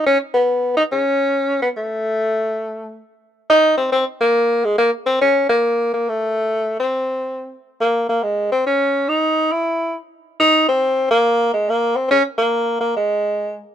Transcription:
tenor saxophone
0.06 C#4
0.34 B3
0.77 D#4
0.92 C#4
1.62 B3
1.77 A3
3.50 D#4
3.77 C4
3.92 C4
4.21 A#3
4.65 G#3
4.78 A#3
5.06 C4
5.22 C#4
5.49 A#3
5.94 A#3
6.09 A3
6.80 C4
7.81 A#3
8.09 A#3
8.23 G#3
8.52 C4
8.67 C#4
9.09 D#4
9.52 E4
10.40 D#4
10.68 C4
11.11 A#3
11.54 G#3
11.70 A#3
11.96 C4
12.11 C#4
12.38 A#3
12.81 A#3
12.97 G#3

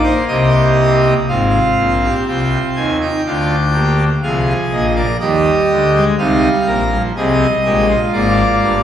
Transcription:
pipe organ
Already playing: A#3 D#4
0.03 C5
0.28 C2 C3 G4 D#5
1.28 G#1 G#2 C4 F4 F5
1.78 A#1 A#2
2.03 G4
2.28 C2 C3 F4 G5
2.76 D#2 D#3 G#5
3.01 D#4 G5
3.26 D2 D3 D4 F4
3.73 A#3 G4
4.22 C2 C3 F3 G#4 F5
4.72 A#1 A#2 D#5
4.96 A#4 D5
5.20 D#2 D#3 G3 G4 D#5
5.70 D2 D3
5.94 G#3
6.18 C2 C3 G3 D#4 F5
6.67 A#1 A#2 A#4
6.91 F3
7.16 C2 C3 G3 G#4 D#5
7.64 A#1 A#2 G#3 G4
7.88 F4
8.13 G#1 G#2 A#3 D5
8.60 G1 G2

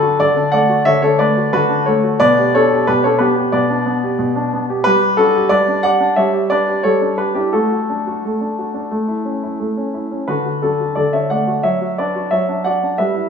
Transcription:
grand piano
Already playing: D3 D4 F#4 A4 B4
0.02 F#4
0.20 D3 A4 D5
0.37 D4
0.52 A3 D5 F#5
0.69 F#4
0.85 D3 C#5 E5
1.02 D4 A4 C#5
1.19 A3 B4 D5
1.37 F#4
1.53 D3 F#4 B4
1.69 D4
1.86 A3 A4 C#5
2.03 F#4
2.20 B2 B4 D5
2.38 G4
2.55 D4 A4 C#5
2.72 G4
2.87 B2 G4 B4
3.04 D4 A4 C#5
3.19 B3 G4 B4
3.38 G4
3.52 B2 B4 D5
3.70 D4
3.86 B3
4.04 G4
4.19 B2
4.36 D4
4.53 B3
4.70 G4
4.84 G3 G4 B4
5.02 G4
5.17 D4 F#4 A4
5.35 G4
5.49 G3 B4 D5
5.68 D4
5.83 G4 D5 F#5
6.00 D4
6.16 G3 C#5 E5
6.33 G4
6.50 D4 B4 D5
6.68 G4
6.83 G3 A4 C#5
7.01 D4
7.18 G4 B4
7.35 D4 E4 G4
7.53 A3 F#4 A4
7.72 F#4
7.90 D4
8.07 F#4
8.25 A3
8.41 D4
8.58 F#4
8.74 D4
8.91 A3
9.08 E4
9.25 C#4
9.43 E4
9.60 A3
9.77 C#4
9.94 E4
10.11 C#4
10.28 D3 F#4 B4
10.46 F#4
10.62 D4 F#4 A4
10.81 F#4
10.95 D3 A4 D5
11.13 D4 C#5 E5
11.30 A3 D5 F#5
11.47 F#4
11.63 F#3 C#5 E5
11.81 F#4
11.98 D4 B4 D5
12.16 F#4
12.31 F#3 C#5 E5
12.49 D4
12.64 F#4 D5 F#5
12.83 D4
12.98 G3 B4 E5
13.14 E4

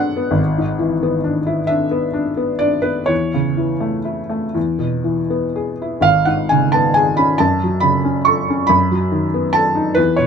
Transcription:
felt piano
Already playing: A1 F#3 B3 D4 F#4 A4 B4 C#5 F#5
0.16 B3
0.31 G#1
0.58 G#2
0.79 E3
1.03 B3
1.24 D4
1.46 E4
1.67 D4 E5
1.91 B3
2.13 D4
2.37 B3
2.59 D4 D5
2.82 B3 B4
3.06 E2 C#5
3.34 C#3
3.57 E3
3.80 A3
4.05 E4
4.30 A3
4.54 E2
4.79 B2
5.04 E3
5.30 B3
5.56 G#4
5.82 E4
6.01 G#1 F5
6.25 G#2 F#5
6.49 C#3 G#5
6.72 B3 A5
6.94 G#4 G#5
7.17 C#4 B5
7.38 F#2 A5
7.63 F#3
7.80 C#3 B5
8.05 C#4
8.25 A4 C#6
8.50 C#4
8.67 F#2 B5
8.91 F#3
9.12 D#3
9.34 B3
9.53 A4 A5
9.75 D#4
9.95 E2 B4
10.16 B2 C#5

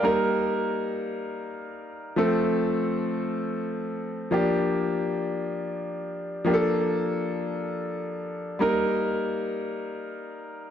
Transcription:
grand piano
Already playing: D5
0.02 G3 A#3 D#4 A#4
2.16 F3 A3 C4 A4
4.31 F3 A#3 D4 G4
6.45 F3 A#3 D4 G4
6.54 A4
8.59 G3 A#3 D#4 A#4

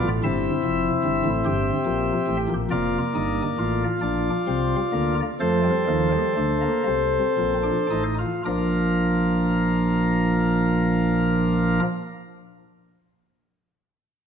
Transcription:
pipe organ
0.03 A1 A2
0.23 G1 G2 C4 E4 E5
0.64 F1 F2
1.04 G1 G2
1.25 A1 A2
1.45 G1 G2 G4
1.86 A#1 A#2
2.28 A1 A2
2.49 A#1 A#2
2.71 F1 F2 A#3 F4 D5
3.15 G1 G2 D#4
3.58 A1 A2 F4
4.01 A#1 A#2 D4 D5
4.47 C2 C3 C4
4.93 D2 D3 A#3
5.40 F2 F3 A3 A4 C5
5.63 G3
5.88 D#2 D#3 F3
6.12 G3
6.37 D2 D3 A3
6.61 A#3
6.86 C2 C3 C4
7.38 A#1 A#2
7.63 D4
7.90 A1 A2 D#4
8.19 F4
8.45 A#1 A#2 F3 A#3 D4 F4 A#4

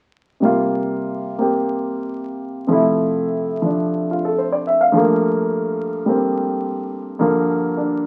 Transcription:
upright piano
0.40 C3 G3 A#3
0.45 F4
1.38 A#3 C4 G4
2.67 C3 F3 A3
2.72 E4
3.62 F3 D4
4.11 F4
4.25 A4
4.38 C5
4.52 D5
4.67 E5
4.81 F5
4.92 G2 F3 A3
4.97 A#3
6.06 G3 A#3 C4
7.19 G2 D3 F3 A#3
7.77 D4

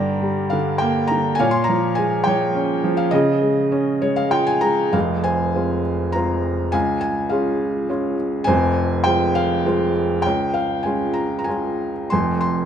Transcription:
felt piano
Already playing: G2 D3 D5 G5 A#5
0.22 G3
0.50 D3 F5
0.78 A#3 G5
1.07 D3 A#5
1.35 G#5
1.39 A#2 C#5 F5
1.51 C6
1.64 A#5
1.69 F3
1.95 G#3 G#5
2.24 F3 C#5 G5
2.55 C#4
2.84 F3
2.97 F5
3.11 C#3 G#4 D#5
3.42 G#3
3.72 C#4
4.02 G#3 C#5
4.16 F5
4.31 F4 G5
4.47 G#5
4.61 G#3 A#5
4.93 F1 F2 G#4 F5
5.24 C5 G#5
5.55 G#3 C4 F4
6.12 G#3 C4 F4 A#5
6.72 C#2 F5 G#5
7.01 G#5
7.29 G#3 C#4 F4 G#4 F5
7.89 G#3 C#4 F4
8.44 F1 F2 C5 G#5
9.04 G#3 C4 F4 G5
9.35 F5
9.66 G#3 C4 F4
10.22 C#5 G5
10.27 C#2
10.54 F5
10.83 G#3 C#4 F4 G#5
11.14 A#5
11.39 A#5
11.44 G#3 C#4 G#5
11.49 F4
12.10 F1 F2 G#5 C6
12.41 C6

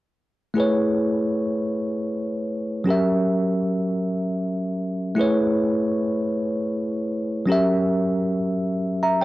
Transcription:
tine electric piano
0.54 A3 E4 G#4
0.58 B4 C#5
2.84 F#3 C#4 G4
2.89 A#4 E5
5.15 A3 E4 G#4
5.20 B4 C#5
7.46 F#3 C#4 G4
7.50 A#4 E5
9.03 E5 A#5

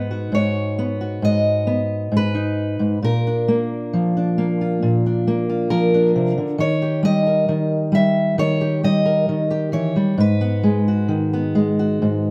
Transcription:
steel-string acoustic guitar
Already playing: G#2 B3 D#4 B4
0.11 F#4
0.32 G#2 C#5
0.79 B3
1.01 F#4
1.22 G#2 D#5
1.67 B3
2.12 G#2
2.17 B4
2.35 D#4
2.79 G#2
3.02 A#2 A#4
3.27 D4
3.48 A#3
3.93 F3
4.17 D4
4.38 A#3
4.61 F4
4.82 A#2
5.06 D4
5.27 A#3
5.49 F4
5.70 F3 A#4
5.94 D4
6.15 C3
6.38 D3
6.58 D#3 C#5
6.82 G4
7.03 G3 D#5
7.27 A#4
7.49 D#3
7.92 G3 E5
8.38 D#3 C#5
8.61 G4
8.83 G3 D#5
9.05 A#4
9.29 D#3
9.51 G4
9.72 E3 C#5
9.96 G3
10.18 G#2 B4
10.41 B3
10.63 G#3
10.88 F#4
11.08 D#3
11.33 B3
11.55 G#3
11.79 F#4
12.02 G#2

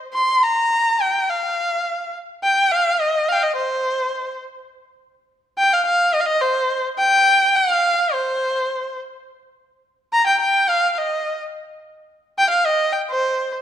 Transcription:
erhu
0.14 C6
0.43 A#5
1.01 G5
1.29 F5
2.44 G5
2.72 F5
3.00 D#5
3.29 F5 G5
3.36 F5
3.43 D#5
3.56 C5
5.58 G5
5.74 F5
5.86 F5
6.14 D#5
6.20 F5
6.26 D#5
6.42 C5
6.98 G5
7.56 F5
8.13 C5
10.13 A#5
10.27 G5
10.41 G5
10.69 F5
10.93 F5
10.98 D#5
12.38 G5
12.50 F5
12.66 D#5
12.93 G5
13.10 C5

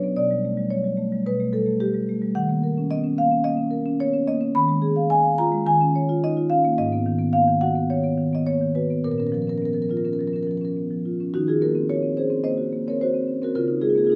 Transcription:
marimba
Already playing: F#3 C#5
0.03 B3
0.16 B2 D5
0.31 G3
0.45 A3
0.58 G3
0.70 F#3 C#5
0.84 G3
0.97 A3
1.12 G3
1.26 B2 B4
1.40 A3
1.53 G3 A4
1.66 A3
1.80 G3 G4
1.95 G3
2.09 A3
2.22 G3
2.35 D#3 F#5
2.49 A#3
2.63 A#4
2.78 C#4
2.91 B3 D#5
3.04 C#4
3.18 A#3 F5
3.31 C#4
3.44 A#3 D#5
3.57 C#4
3.71 A#4
3.86 C#4
4.00 B3 C#5
4.13 C#4
4.28 A#3 D#5
4.41 C#4
4.55 D#3 B5
4.68 G#3
4.82 G#4
4.96 F5
5.10 D#5 G#5
5.23 F5
5.38 F4 A#5
5.52 G#3
5.66 D#3 G#5
5.81 C#4
5.95 C#5
6.09 F4
6.24 D#4 D#5
6.37 F4
6.50 C#4 F5
6.65 A#3
6.78 G#2 D#5
6.92 B3
7.06 D#3
7.19 B3
7.33 A#3 F5
7.48 D#3
7.61 F#4 F#5
7.76 B3
7.90 D#3 C#5
8.04 B3
8.18 D#3
8.33 B3 D#5
8.47 A#3 C#5
8.62 D#3
8.75 F#4 B4
8.91 B3
9.04 A#2 A#4
9.12 A#4
9.18 C#4 A#4
9.27 A#4
9.32 F3 A#4
9.42 A#4
9.47 C#4 A#4
9.58 A#4
9.62 B3 A#4
9.73 F3 A#4
9.82 A#4
9.89 F4 A#4
9.97 A#4
10.05 C#4 A#4
10.13 A#4
10.19 F3 A#4
10.28 A#4
10.33 C#4 A#4
10.43 A#4
10.47 F3 A#4
10.57 A#4
10.61 C#4 A#4
10.77 B3
10.91 F3
11.06 F4
11.21 C#4
11.34 D#3 D#4 F#4
11.47 F4 F#4 G#4
11.62 A#3 F#4 A#4
11.75 C4
11.89 F#4 A#4 C#5
12.03 C4
12.17 C#4 G#4 C5
12.30 C4
12.43 A#3 C5 D#5
12.58 F#4
12.73 A#3
12.87 C4 A#4 C#5
13.01 F#4 C5
13.14 C4
13.28 C#4
13.42 C4 F#4 A#4
13.55 C#3 F4 A#4
13.68 D#4
13.81 G#3 F4 G#4
13.90 F4 G#4
13.95 A#3 F4 G#4
14.05 F4 G#4
14.10 D#4 G#4

